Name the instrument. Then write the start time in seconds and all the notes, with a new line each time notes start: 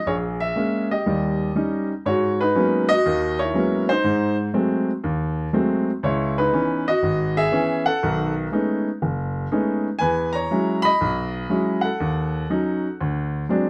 grand piano
0.07 A#1 G#4 C#5
0.40 E5
0.56 G#3 A#3 C#4
0.91 G4 D#5
1.06 D#2 G3
1.55 G3 C#4 D#4
2.06 G#2 F#4 C#5
2.41 D#4 B4
2.55 F#3 G#3 A#3 B3 C#4
2.89 F#4 D#5
3.06 D#2 D#3
3.39 E4 C#5
3.54 F#3 G#3 A#3 B3 C#4
3.89 D#4 C5
4.04 G#2
4.54 F#3 G#3 A3 C4
5.04 D#2
5.53 F#3 G#3 A3 C4
6.03 C#2 E4 C#5
6.38 D#4 B4
6.53 E3 B3 C#4
6.88 F#4 D#5
7.03 G#1
7.37 G#4 E5
7.52 E3 B3 C#4
7.86 A4 F#5
8.03 B1 D#3
8.52 G#3 A3 B3 C#4 D#4
9.02 F#1
9.51 G#3 A3 B3 C#4 D#4
9.99 E2 B4 G#5
10.33 C#5 A#5
10.51 F#3 G#3 C#4 E4
10.82 D#5 B5
11.01 B1
11.50 F#3 G#3 C#4 E4
11.81 A4 F#5
12.00 D#2
12.50 F#3 C#4 D#4
13.01 D2
13.49 F#3 G#3 C4 D4